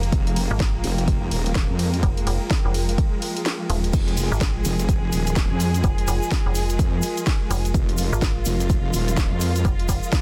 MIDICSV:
0, 0, Header, 1, 6, 480
1, 0, Start_track
1, 0, Key_signature, -4, "minor"
1, 0, Tempo, 476190
1, 126, Time_signature, 4, 2, 24, 8
1, 10298, End_track
2, 0, Start_track
2, 0, Title_t, "Ambient pad"
2, 0, Program_c, 0, 92
2, 0, Note_on_c, 0, 65, 85
2, 0, Note_on_c, 0, 70, 72
2, 0, Note_on_c, 0, 79, 78
2, 4804, Note_on_c, 0, 75, 79
2, 4831, Note_off_c, 0, 79, 0
2, 10298, Note_off_c, 0, 65, 0
2, 10298, Note_off_c, 0, 70, 0
2, 10298, Note_off_c, 0, 75, 0
2, 10298, End_track
3, 0, Start_track
3, 0, Title_t, "String section"
3, 0, Program_c, 1, 48
3, 0, Note_on_c, 1, 53, 85
3, 0, Note_on_c, 1, 56, 78
3, 0, Note_on_c, 1, 58, 93
3, 3954, Note_off_c, 1, 58, 0
3, 3965, Note_on_c, 1, 68, 94
3, 7796, Note_off_c, 1, 68, 0
3, 7806, Note_on_c, 1, 65, 94
3, 10298, Note_off_c, 1, 53, 0
3, 10298, Note_off_c, 1, 56, 0
3, 10298, Note_off_c, 1, 65, 0
3, 10298, End_track
4, 0, Start_track
4, 0, Title_t, "FM bass"
4, 0, Program_c, 2, 39
4, 0, Note_on_c, 2, 29, 100
4, 111, Note_off_c, 2, 29, 0
4, 512, Note_on_c, 2, 32, 105
4, 831, Note_off_c, 2, 32, 0
4, 2046, Note_on_c, 2, 29, 100
4, 2271, Note_off_c, 2, 29, 0
4, 2285, Note_on_c, 2, 29, 95
4, 2408, Note_off_c, 2, 29, 0
4, 2671, Note_on_c, 2, 29, 99
4, 2990, Note_off_c, 2, 29, 0
4, 3726, Note_on_c, 2, 27, 96
4, 3951, Note_off_c, 2, 27, 0
4, 4351, Note_on_c, 2, 32, 101
4, 4670, Note_off_c, 2, 32, 0
4, 5885, Note_on_c, 2, 29, 100
4, 6110, Note_off_c, 2, 29, 0
4, 6126, Note_on_c, 2, 29, 98
4, 6248, Note_off_c, 2, 29, 0
4, 6513, Note_on_c, 2, 29, 97
4, 6831, Note_off_c, 2, 29, 0
4, 7565, Note_on_c, 2, 29, 98
4, 7790, Note_off_c, 2, 29, 0
4, 8192, Note_on_c, 2, 32, 101
4, 8510, Note_off_c, 2, 32, 0
4, 9726, Note_on_c, 2, 29, 101
4, 9951, Note_off_c, 2, 29, 0
4, 9966, Note_on_c, 2, 29, 98
4, 10089, Note_off_c, 2, 29, 0
4, 10298, End_track
5, 0, Start_track
5, 0, Title_t, "Wobble bass"
5, 0, Program_c, 3, 39
5, 125, Note_on_c, 3, 29, 101
5, 488, Note_off_c, 3, 29, 0
5, 844, Note_on_c, 3, 29, 95
5, 1310, Note_off_c, 3, 29, 0
5, 1324, Note_on_c, 3, 27, 99
5, 1687, Note_off_c, 3, 27, 0
5, 1712, Note_on_c, 3, 41, 103
5, 2031, Note_off_c, 3, 41, 0
5, 3966, Note_on_c, 3, 29, 104
5, 4329, Note_off_c, 3, 29, 0
5, 4684, Note_on_c, 3, 29, 96
5, 5150, Note_off_c, 3, 29, 0
5, 5165, Note_on_c, 3, 27, 102
5, 5528, Note_off_c, 3, 27, 0
5, 5551, Note_on_c, 3, 41, 102
5, 5870, Note_off_c, 3, 41, 0
5, 6846, Note_on_c, 3, 41, 93
5, 7071, Note_off_c, 3, 41, 0
5, 7806, Note_on_c, 3, 29, 104
5, 8168, Note_off_c, 3, 29, 0
5, 8525, Note_on_c, 3, 29, 94
5, 8990, Note_off_c, 3, 29, 0
5, 9006, Note_on_c, 3, 27, 98
5, 9368, Note_off_c, 3, 27, 0
5, 9392, Note_on_c, 3, 41, 102
5, 9711, Note_off_c, 3, 41, 0
5, 10298, End_track
6, 0, Start_track
6, 0, Title_t, "Drums"
6, 32, Note_on_c, 9, 42, 50
6, 125, Note_off_c, 9, 42, 0
6, 125, Note_on_c, 9, 36, 118
6, 125, Note_on_c, 9, 42, 70
6, 125, Note_on_c, 9, 51, 61
6, 226, Note_off_c, 9, 36, 0
6, 226, Note_off_c, 9, 42, 0
6, 226, Note_off_c, 9, 51, 0
6, 272, Note_on_c, 9, 42, 55
6, 366, Note_on_c, 9, 46, 106
6, 366, Note_on_c, 9, 51, 85
6, 373, Note_off_c, 9, 42, 0
6, 467, Note_off_c, 9, 46, 0
6, 467, Note_off_c, 9, 51, 0
6, 605, Note_on_c, 9, 36, 125
6, 605, Note_on_c, 9, 38, 118
6, 605, Note_on_c, 9, 42, 65
6, 605, Note_on_c, 9, 51, 58
6, 706, Note_off_c, 9, 36, 0
6, 706, Note_off_c, 9, 38, 0
6, 706, Note_off_c, 9, 42, 0
6, 706, Note_off_c, 9, 51, 0
6, 844, Note_on_c, 9, 46, 103
6, 844, Note_on_c, 9, 51, 86
6, 945, Note_off_c, 9, 46, 0
6, 945, Note_off_c, 9, 51, 0
6, 991, Note_on_c, 9, 42, 56
6, 1085, Note_on_c, 9, 36, 108
6, 1086, Note_off_c, 9, 42, 0
6, 1086, Note_on_c, 9, 42, 67
6, 1086, Note_on_c, 9, 51, 63
6, 1186, Note_off_c, 9, 36, 0
6, 1186, Note_off_c, 9, 42, 0
6, 1186, Note_off_c, 9, 51, 0
6, 1325, Note_on_c, 9, 46, 100
6, 1325, Note_on_c, 9, 51, 84
6, 1425, Note_off_c, 9, 46, 0
6, 1425, Note_off_c, 9, 51, 0
6, 1471, Note_on_c, 9, 42, 58
6, 1565, Note_off_c, 9, 42, 0
6, 1565, Note_on_c, 9, 36, 116
6, 1565, Note_on_c, 9, 38, 115
6, 1565, Note_on_c, 9, 42, 72
6, 1565, Note_on_c, 9, 51, 60
6, 1666, Note_off_c, 9, 36, 0
6, 1666, Note_off_c, 9, 38, 0
6, 1666, Note_off_c, 9, 42, 0
6, 1666, Note_off_c, 9, 51, 0
6, 1805, Note_on_c, 9, 46, 103
6, 1805, Note_on_c, 9, 51, 86
6, 1906, Note_off_c, 9, 46, 0
6, 1906, Note_off_c, 9, 51, 0
6, 1952, Note_on_c, 9, 42, 53
6, 2045, Note_on_c, 9, 36, 117
6, 2046, Note_off_c, 9, 42, 0
6, 2046, Note_on_c, 9, 42, 71
6, 2046, Note_on_c, 9, 51, 60
6, 2146, Note_off_c, 9, 36, 0
6, 2147, Note_off_c, 9, 42, 0
6, 2147, Note_off_c, 9, 51, 0
6, 2191, Note_on_c, 9, 42, 55
6, 2286, Note_on_c, 9, 46, 110
6, 2286, Note_on_c, 9, 51, 84
6, 2292, Note_off_c, 9, 42, 0
6, 2387, Note_off_c, 9, 46, 0
6, 2387, Note_off_c, 9, 51, 0
6, 2525, Note_on_c, 9, 36, 127
6, 2525, Note_on_c, 9, 38, 121
6, 2525, Note_on_c, 9, 42, 72
6, 2525, Note_on_c, 9, 51, 59
6, 2626, Note_off_c, 9, 36, 0
6, 2626, Note_off_c, 9, 38, 0
6, 2626, Note_off_c, 9, 42, 0
6, 2626, Note_off_c, 9, 51, 0
6, 2766, Note_on_c, 9, 46, 103
6, 2766, Note_on_c, 9, 51, 82
6, 2866, Note_off_c, 9, 46, 0
6, 2866, Note_off_c, 9, 51, 0
6, 2912, Note_on_c, 9, 42, 57
6, 3006, Note_off_c, 9, 42, 0
6, 3006, Note_on_c, 9, 36, 117
6, 3006, Note_on_c, 9, 42, 73
6, 3006, Note_on_c, 9, 51, 60
6, 3106, Note_off_c, 9, 36, 0
6, 3107, Note_off_c, 9, 42, 0
6, 3107, Note_off_c, 9, 51, 0
6, 3245, Note_on_c, 9, 46, 103
6, 3245, Note_on_c, 9, 51, 81
6, 3346, Note_off_c, 9, 46, 0
6, 3346, Note_off_c, 9, 51, 0
6, 3392, Note_on_c, 9, 42, 57
6, 3486, Note_off_c, 9, 42, 0
6, 3486, Note_on_c, 9, 38, 126
6, 3486, Note_on_c, 9, 42, 69
6, 3486, Note_on_c, 9, 51, 61
6, 3587, Note_off_c, 9, 38, 0
6, 3587, Note_off_c, 9, 42, 0
6, 3587, Note_off_c, 9, 51, 0
6, 3726, Note_on_c, 9, 46, 103
6, 3726, Note_on_c, 9, 51, 83
6, 3826, Note_off_c, 9, 46, 0
6, 3826, Note_off_c, 9, 51, 0
6, 3872, Note_on_c, 9, 42, 52
6, 3963, Note_on_c, 9, 82, 39
6, 3966, Note_off_c, 9, 42, 0
6, 3966, Note_on_c, 9, 36, 124
6, 3966, Note_on_c, 9, 42, 69
6, 3966, Note_on_c, 9, 49, 78
6, 3966, Note_on_c, 9, 51, 56
6, 4063, Note_off_c, 9, 82, 0
6, 4066, Note_off_c, 9, 42, 0
6, 4066, Note_off_c, 9, 49, 0
6, 4066, Note_off_c, 9, 51, 0
6, 4067, Note_off_c, 9, 36, 0
6, 4111, Note_on_c, 9, 42, 57
6, 4205, Note_on_c, 9, 46, 113
6, 4205, Note_on_c, 9, 51, 87
6, 4208, Note_on_c, 9, 82, 90
6, 4212, Note_off_c, 9, 42, 0
6, 4306, Note_off_c, 9, 46, 0
6, 4306, Note_off_c, 9, 51, 0
6, 4309, Note_off_c, 9, 82, 0
6, 4359, Note_on_c, 9, 82, 59
6, 4445, Note_on_c, 9, 38, 123
6, 4445, Note_on_c, 9, 42, 71
6, 4445, Note_on_c, 9, 51, 55
6, 4446, Note_on_c, 9, 36, 127
6, 4447, Note_off_c, 9, 82, 0
6, 4447, Note_on_c, 9, 82, 40
6, 4546, Note_off_c, 9, 36, 0
6, 4546, Note_off_c, 9, 38, 0
6, 4546, Note_off_c, 9, 42, 0
6, 4546, Note_off_c, 9, 51, 0
6, 4547, Note_off_c, 9, 82, 0
6, 4686, Note_on_c, 9, 46, 107
6, 4686, Note_on_c, 9, 51, 82
6, 4688, Note_on_c, 9, 82, 94
6, 4787, Note_off_c, 9, 46, 0
6, 4787, Note_off_c, 9, 51, 0
6, 4788, Note_off_c, 9, 82, 0
6, 4829, Note_on_c, 9, 82, 49
6, 4832, Note_on_c, 9, 42, 57
6, 4926, Note_off_c, 9, 42, 0
6, 4926, Note_on_c, 9, 36, 122
6, 4926, Note_on_c, 9, 42, 71
6, 4926, Note_on_c, 9, 51, 55
6, 4928, Note_off_c, 9, 82, 0
6, 4928, Note_on_c, 9, 82, 38
6, 5026, Note_off_c, 9, 36, 0
6, 5027, Note_off_c, 9, 42, 0
6, 5027, Note_off_c, 9, 51, 0
6, 5029, Note_off_c, 9, 82, 0
6, 5166, Note_on_c, 9, 46, 106
6, 5166, Note_on_c, 9, 51, 78
6, 5166, Note_on_c, 9, 82, 86
6, 5267, Note_off_c, 9, 46, 0
6, 5267, Note_off_c, 9, 51, 0
6, 5267, Note_off_c, 9, 82, 0
6, 5310, Note_on_c, 9, 82, 45
6, 5312, Note_on_c, 9, 42, 59
6, 5405, Note_off_c, 9, 42, 0
6, 5405, Note_off_c, 9, 82, 0
6, 5405, Note_on_c, 9, 38, 123
6, 5405, Note_on_c, 9, 42, 71
6, 5405, Note_on_c, 9, 51, 60
6, 5405, Note_on_c, 9, 82, 39
6, 5406, Note_on_c, 9, 36, 123
6, 5505, Note_off_c, 9, 38, 0
6, 5505, Note_off_c, 9, 82, 0
6, 5506, Note_off_c, 9, 36, 0
6, 5506, Note_off_c, 9, 42, 0
6, 5506, Note_off_c, 9, 51, 0
6, 5644, Note_on_c, 9, 46, 105
6, 5644, Note_on_c, 9, 51, 79
6, 5650, Note_on_c, 9, 82, 94
6, 5745, Note_off_c, 9, 46, 0
6, 5745, Note_off_c, 9, 51, 0
6, 5751, Note_off_c, 9, 82, 0
6, 5790, Note_on_c, 9, 42, 54
6, 5791, Note_on_c, 9, 82, 55
6, 5883, Note_off_c, 9, 82, 0
6, 5883, Note_on_c, 9, 82, 37
6, 5885, Note_off_c, 9, 42, 0
6, 5885, Note_on_c, 9, 36, 127
6, 5885, Note_on_c, 9, 42, 67
6, 5885, Note_on_c, 9, 51, 55
6, 5984, Note_off_c, 9, 82, 0
6, 5986, Note_off_c, 9, 36, 0
6, 5986, Note_off_c, 9, 42, 0
6, 5986, Note_off_c, 9, 51, 0
6, 6030, Note_on_c, 9, 42, 57
6, 6125, Note_on_c, 9, 46, 115
6, 6125, Note_on_c, 9, 51, 80
6, 6126, Note_on_c, 9, 82, 104
6, 6131, Note_off_c, 9, 42, 0
6, 6225, Note_off_c, 9, 46, 0
6, 6225, Note_off_c, 9, 51, 0
6, 6227, Note_off_c, 9, 82, 0
6, 6274, Note_on_c, 9, 82, 60
6, 6365, Note_on_c, 9, 36, 127
6, 6365, Note_on_c, 9, 38, 127
6, 6365, Note_on_c, 9, 42, 66
6, 6365, Note_on_c, 9, 51, 54
6, 6368, Note_off_c, 9, 82, 0
6, 6368, Note_on_c, 9, 82, 42
6, 6465, Note_off_c, 9, 38, 0
6, 6466, Note_off_c, 9, 36, 0
6, 6466, Note_off_c, 9, 42, 0
6, 6466, Note_off_c, 9, 51, 0
6, 6469, Note_off_c, 9, 82, 0
6, 6602, Note_on_c, 9, 82, 104
6, 6605, Note_on_c, 9, 46, 109
6, 6605, Note_on_c, 9, 51, 78
6, 6703, Note_off_c, 9, 82, 0
6, 6706, Note_off_c, 9, 46, 0
6, 6706, Note_off_c, 9, 51, 0
6, 6746, Note_on_c, 9, 82, 53
6, 6752, Note_on_c, 9, 42, 55
6, 6846, Note_off_c, 9, 42, 0
6, 6846, Note_on_c, 9, 36, 127
6, 6846, Note_on_c, 9, 42, 70
6, 6846, Note_on_c, 9, 51, 57
6, 6847, Note_off_c, 9, 82, 0
6, 6848, Note_on_c, 9, 82, 44
6, 6946, Note_off_c, 9, 36, 0
6, 6947, Note_off_c, 9, 42, 0
6, 6947, Note_off_c, 9, 51, 0
6, 6949, Note_off_c, 9, 82, 0
6, 7078, Note_on_c, 9, 82, 99
6, 7086, Note_on_c, 9, 46, 106
6, 7086, Note_on_c, 9, 51, 76
6, 7179, Note_off_c, 9, 82, 0
6, 7186, Note_off_c, 9, 46, 0
6, 7186, Note_off_c, 9, 51, 0
6, 7232, Note_on_c, 9, 42, 53
6, 7232, Note_on_c, 9, 82, 55
6, 7324, Note_off_c, 9, 82, 0
6, 7324, Note_on_c, 9, 82, 37
6, 7326, Note_off_c, 9, 42, 0
6, 7326, Note_on_c, 9, 36, 126
6, 7326, Note_on_c, 9, 38, 127
6, 7326, Note_on_c, 9, 42, 66
6, 7326, Note_on_c, 9, 51, 57
6, 7425, Note_off_c, 9, 82, 0
6, 7426, Note_off_c, 9, 36, 0
6, 7427, Note_off_c, 9, 38, 0
6, 7427, Note_off_c, 9, 42, 0
6, 7427, Note_off_c, 9, 51, 0
6, 7566, Note_on_c, 9, 46, 118
6, 7566, Note_on_c, 9, 51, 76
6, 7573, Note_on_c, 9, 82, 103
6, 7667, Note_off_c, 9, 46, 0
6, 7667, Note_off_c, 9, 51, 0
6, 7674, Note_off_c, 9, 82, 0
6, 7712, Note_on_c, 9, 42, 51
6, 7715, Note_on_c, 9, 82, 56
6, 7805, Note_on_c, 9, 36, 127
6, 7806, Note_off_c, 9, 82, 0
6, 7806, Note_on_c, 9, 82, 39
6, 7807, Note_off_c, 9, 42, 0
6, 7807, Note_on_c, 9, 42, 64
6, 7807, Note_on_c, 9, 51, 55
6, 7906, Note_off_c, 9, 36, 0
6, 7907, Note_off_c, 9, 42, 0
6, 7907, Note_off_c, 9, 51, 0
6, 7907, Note_off_c, 9, 82, 0
6, 7952, Note_on_c, 9, 42, 52
6, 8038, Note_on_c, 9, 82, 90
6, 8047, Note_on_c, 9, 46, 121
6, 8047, Note_on_c, 9, 51, 80
6, 8053, Note_off_c, 9, 42, 0
6, 8138, Note_off_c, 9, 82, 0
6, 8148, Note_off_c, 9, 46, 0
6, 8148, Note_off_c, 9, 51, 0
6, 8196, Note_on_c, 9, 82, 61
6, 8286, Note_off_c, 9, 82, 0
6, 8286, Note_on_c, 9, 36, 127
6, 8286, Note_on_c, 9, 82, 44
6, 8287, Note_on_c, 9, 38, 125
6, 8287, Note_on_c, 9, 42, 66
6, 8287, Note_on_c, 9, 51, 52
6, 8386, Note_off_c, 9, 36, 0
6, 8386, Note_off_c, 9, 82, 0
6, 8388, Note_off_c, 9, 38, 0
6, 8388, Note_off_c, 9, 42, 0
6, 8388, Note_off_c, 9, 51, 0
6, 8522, Note_on_c, 9, 82, 108
6, 8527, Note_on_c, 9, 46, 116
6, 8527, Note_on_c, 9, 51, 75
6, 8623, Note_off_c, 9, 82, 0
6, 8628, Note_off_c, 9, 46, 0
6, 8628, Note_off_c, 9, 51, 0
6, 8670, Note_on_c, 9, 82, 59
6, 8673, Note_on_c, 9, 42, 51
6, 8763, Note_off_c, 9, 82, 0
6, 8763, Note_on_c, 9, 82, 41
6, 8766, Note_on_c, 9, 36, 124
6, 8767, Note_off_c, 9, 42, 0
6, 8767, Note_on_c, 9, 42, 66
6, 8767, Note_on_c, 9, 51, 56
6, 8864, Note_off_c, 9, 82, 0
6, 8867, Note_off_c, 9, 36, 0
6, 8868, Note_off_c, 9, 42, 0
6, 8868, Note_off_c, 9, 51, 0
6, 9007, Note_on_c, 9, 46, 108
6, 9007, Note_on_c, 9, 51, 75
6, 9008, Note_on_c, 9, 82, 98
6, 9108, Note_off_c, 9, 46, 0
6, 9108, Note_off_c, 9, 51, 0
6, 9109, Note_off_c, 9, 82, 0
6, 9153, Note_on_c, 9, 42, 53
6, 9157, Note_on_c, 9, 82, 57
6, 9245, Note_off_c, 9, 82, 0
6, 9245, Note_on_c, 9, 82, 43
6, 9246, Note_off_c, 9, 42, 0
6, 9246, Note_on_c, 9, 36, 127
6, 9246, Note_on_c, 9, 38, 121
6, 9246, Note_on_c, 9, 42, 67
6, 9246, Note_on_c, 9, 51, 56
6, 9345, Note_off_c, 9, 82, 0
6, 9347, Note_off_c, 9, 36, 0
6, 9347, Note_off_c, 9, 38, 0
6, 9347, Note_off_c, 9, 42, 0
6, 9347, Note_off_c, 9, 51, 0
6, 9482, Note_on_c, 9, 82, 105
6, 9487, Note_on_c, 9, 46, 111
6, 9487, Note_on_c, 9, 51, 76
6, 9583, Note_off_c, 9, 82, 0
6, 9587, Note_off_c, 9, 46, 0
6, 9587, Note_off_c, 9, 51, 0
6, 9632, Note_on_c, 9, 82, 57
6, 9633, Note_on_c, 9, 42, 49
6, 9725, Note_off_c, 9, 82, 0
6, 9725, Note_on_c, 9, 82, 43
6, 9726, Note_on_c, 9, 36, 127
6, 9727, Note_off_c, 9, 42, 0
6, 9727, Note_on_c, 9, 42, 65
6, 9727, Note_on_c, 9, 51, 54
6, 9825, Note_off_c, 9, 82, 0
6, 9827, Note_off_c, 9, 36, 0
6, 9827, Note_off_c, 9, 42, 0
6, 9827, Note_off_c, 9, 51, 0
6, 9873, Note_on_c, 9, 42, 54
6, 9966, Note_on_c, 9, 36, 64
6, 9966, Note_on_c, 9, 82, 96
6, 9967, Note_on_c, 9, 46, 116
6, 9967, Note_on_c, 9, 51, 84
6, 9974, Note_off_c, 9, 42, 0
6, 10067, Note_off_c, 9, 36, 0
6, 10067, Note_off_c, 9, 82, 0
6, 10068, Note_off_c, 9, 46, 0
6, 10068, Note_off_c, 9, 51, 0
6, 10111, Note_on_c, 9, 82, 50
6, 10201, Note_off_c, 9, 82, 0
6, 10201, Note_on_c, 9, 82, 39
6, 10206, Note_on_c, 9, 36, 127
6, 10206, Note_on_c, 9, 38, 120
6, 10206, Note_on_c, 9, 42, 66
6, 10206, Note_on_c, 9, 51, 55
6, 10298, Note_off_c, 9, 36, 0
6, 10298, Note_off_c, 9, 38, 0
6, 10298, Note_off_c, 9, 42, 0
6, 10298, Note_off_c, 9, 51, 0
6, 10298, Note_off_c, 9, 82, 0
6, 10298, End_track
0, 0, End_of_file